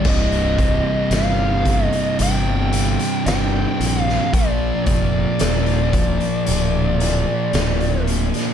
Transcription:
0.05 fingered electric bass C1, distorted electric guitar C2 G2 C3, kick, crash
0.09 lead electric guitar D#5
0.32 closed hi-hat
0.58 distorted electric guitar C2 G2 C3, kick, closed hi-hat
1.10 fingered electric bass G1, distorted electric guitar C2 G2 C3, snare, closed hi-hat
1.15 lead electric guitar F5
1.65 distorted electric guitar C2 G2 C3, kick, closed hi-hat
1.85 lead electric guitar D#5
1.93 closed hi-hat
2.19 fingered electric bass G1, distorted electric guitar C2 G2 C3, lead electric guitar G5, closed hi-hat
2.73 distorted electric guitar C2 G2 C3, closed hi-hat
3.00 closed hi-hat
3.26 fingered electric bass G1, distorted electric guitar C2 G2 C3, lead electric guitar G5, snare, closed hi-hat
3.79 fingered electric bass A#1, distorted electric guitar C2 G2 C3, closed hi-hat
4.03 lead electric guitar F5
4.09 snare
4.32 fingered electric bass A#1, distorted electric guitar A#2 F3 A#3, lead electric guitar D5, kick, closed hi-hat
4.86 fingered electric bass F1, distorted electric guitar A#2 F3 A#3, lead electric guitar D5, kick, closed hi-hat
5.39 fingered electric bass D#1, distorted electric guitar A#2 F3 A#3, snare, closed hi-hat
5.66 closed hi-hat
5.93 distorted electric guitar A#2 F3 A#3, kick, closed hi-hat
6.21 closed hi-hat
6.47 fingered electric bass D1, distorted electric guitar A#2 F3 A#3, closed hi-hat
7.00 distorted electric guitar A#2 F3 A#3, closed hi-hat
7.53 fingered electric bass D1, distorted electric guitar A#2 F3 A#3, snare, closed hi-hat
7.81 closed hi-hat
8.06 distorted electric guitar A#2 F3 A#3, closed hi-hat
8.34 snare, closed hi-hat

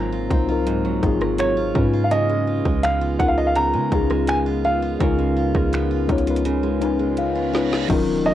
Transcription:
Already playing: 808-style bass G#1, steel-string acoustic guitar G#2 F#3 C4 F4, ambient pad C3 F#3 A#3 F4, synth keys F#3 C4 D#4 F4 A#4, grand piano A#5
0.12 steel-string acoustic guitar F4
0.29 808-style bass C2, synth keys F#3 C4 D#4 F4, steel-string acoustic guitar C4, kick, closed hi-hat
0.34 synth keys C5
0.47 synth keys F#3 C4 D#4 F4, steel-string acoustic guitar F4
0.52 synth keys A#4
0.67 steel-string acoustic guitar G#2, closed hi-hat
0.85 steel-string acoustic guitar F#3
1.01 808-style bass G#1, synth keys F#3 C4 D#4 F4, steel-string acoustic guitar F4, kick, closed hi-hat
1.06 synth keys G#4
1.21 steel-string acoustic guitar F#3, cross-stick
1.38 grand piano C#5, finger snap, closed hi-hat
1.57 steel-string acoustic guitar F4
1.74 808-style bass G#2, steel-string acoustic guitar C#3, ambient pad C#3 B3, synth keys G#3 C#4 D#4 F4, kick
1.78 synth keys B4
1.93 steel-string acoustic guitar F4
2.04 grand piano F5
2.11 steel-string acoustic guitar C#3, grand piano D#5, closed hi-hat
2.29 steel-string acoustic guitar G#3
2.47 steel-string acoustic guitar F4
2.65 808-style bass C#2, steel-string acoustic guitar G#3, kick
2.83 steel-string acoustic guitar B3, grand piano F5, finger snap, closed hi-hat
3.01 steel-string acoustic guitar F4
3.19 808-style bass C#2, synth keys G#3 C#4 D#4 F4, steel-string acoustic guitar B3, grand piano F#5, kick, closed hi-hat
3.23 synth keys A#4
3.29 grand piano F5
3.38 steel-string acoustic guitar F4, grand piano D#5
3.47 grand piano F5
3.56 steel-string acoustic guitar C#3, grand piano A#5, closed hi-hat
3.74 808-style bass C#3, steel-string acoustic guitar G#3
3.91 808-style bass C#2, synth keys G#3 C#4 D#4 F4, steel-string acoustic guitar F4, kick, closed hi-hat
3.95 synth keys G#4
4.10 steel-string acoustic guitar G#3, cross-stick
4.28 steel-string acoustic guitar B3, grand piano G#5, finger snap, closed hi-hat
4.46 steel-string acoustic guitar F4
4.64 steel-string acoustic guitar B3, grand piano F5
4.82 steel-string acoustic guitar F4
4.99 808-style bass C#2, steel-string acoustic guitar C#3, synth keys G#3 C#4 D#4 F4, kick, closed hi-hat
5.04 synth keys A#4
5.19 steel-string acoustic guitar G#3
5.37 steel-string acoustic guitar F4
5.54 808-style bass C#2, steel-string acoustic guitar G#3, kick, cross-stick
5.73 steel-string acoustic guitar B3, finger snap, closed hi-hat
5.91 steel-string acoustic guitar F4
6.07 808-style bass C#2, synth keys G#3 C#4 D#4 F4, steel-string acoustic guitar B3, kick, closed hi-hat
6.12 synth keys C#5
6.18 closed hi-hat
6.26 synth keys G#3 C#4 D#4 F4, steel-string acoustic guitar F4, closed hi-hat
6.30 synth keys B4
6.36 closed hi-hat
6.45 steel-string acoustic guitar C#3, closed hi-hat, reverse cymbal
6.63 steel-string acoustic guitar G#3
6.80 synth keys G#3 C#4 D#4 F4 G#5, steel-string acoustic guitar F4, closed hi-hat
6.84 synth keys B4
6.99 steel-string acoustic guitar G#3
7.17 steel-string acoustic guitar B3, synth keys F5, closed hi-hat
7.35 steel-string acoustic guitar F4
7.52 synth keys G#3 C#4 D#4 F4 C#5, steel-string acoustic guitar B3, snare
7.57 synth keys B4
7.71 steel-string acoustic guitar F4, snare
7.88 808-style bass D#1, ambient pad C#3 F#3 D#4, steel-string acoustic guitar D#3, synth keys F#3 C#4 D#4 F4, kick, closed hi-hat, crash, downlifter
7.93 synth keys A#4
8.26 808-style bass F#1, steel-string acoustic guitar F#3, grand piano D#5

